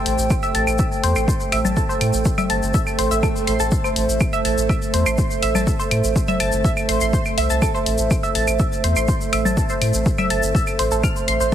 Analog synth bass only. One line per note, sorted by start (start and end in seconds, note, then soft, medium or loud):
0.06 0.16 A1 medium
0.18 0.28 A1 medium
0.55 0.65 A1 loud
0.67 0.77 A1 medium
1.04 1.14 E2 medium
1.16 1.26 A1 medium
1.52 1.62 A1 medium
1.65 1.74 A1 medium
2.01 2.11 A2 medium
2.14 2.23 A1 medium
2.50 2.60 G1 medium
2.62 2.72 G1 medium
2.99 3.09 A1 medium
3.11 3.21 A1 medium
3.47 3.57 A1 medium
3.60 3.69 A1 medium
3.96 4.06 A1 loud
4.09 4.18 A1 medium
4.45 4.55 A1 medium
4.58 4.67 A1 medium
4.94 5.04 E2 medium
5.06 5.16 A1 medium
5.43 5.53 A1 medium
5.55 5.65 A1 medium
5.91 6.01 A2 loud
6.04 6.13 A1 medium
6.40 6.50 G1 medium
6.53 6.62 G1 medium
6.89 6.99 A1 medium
7.01 7.11 A1 medium
7.38 7.48 C2 loud
7.50 7.60 C2 medium
7.86 7.96 A1 medium
7.99 8.08 A1 medium
8.35 8.45 A1 loud
8.48 8.57 A1 medium
8.84 8.94 E2 medium
8.96 9.06 A1 medium
9.33 9.43 A1 loud
9.45 9.55 A1 medium
9.82 9.92 A2 medium
9.94 10.04 A1 medium
10.30 10.40 G1 medium
10.43 10.52 G1 medium
10.79 10.89 A1 medium
10.92 11.01 A1 medium
11.28 11.38 A1 medium
11.40 11.50 A1 medium